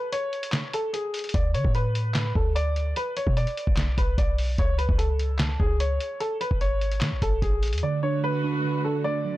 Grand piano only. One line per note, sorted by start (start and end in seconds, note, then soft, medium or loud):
0.12 0.70 C#5 medium
0.74 0.89 A4 medium
0.93 1.32 G#4 medium
1.34 1.50 D5 medium
1.54 1.70 C#5 medium
1.75 2.32 B4 medium
2.36 2.51 A4 medium
2.56 2.94 D5 loud
2.97 3.12 B4 medium
3.17 3.32 C#5 medium
3.37 3.94 D5 medium
3.98 4.13 B4 medium
4.18 4.56 D5 medium
4.59 4.74 C#5 medium
4.78 4.94 B4 medium
4.98 5.56 A4 medium
5.60 5.75 G#4 medium
5.80 6.18 C#5 medium
6.20 6.36 A4 medium
6.41 6.56 B4 medium
6.61 7.18 C#5 medium
7.22 7.38 A4 medium
7.42 7.80 G#4 medium
7.83 7.98 D5 medium
8.03 8.18 C#5 medium
8.24 8.81 B4 medium
8.85 9.00 A4 medium
9.04 9.37 D5 loud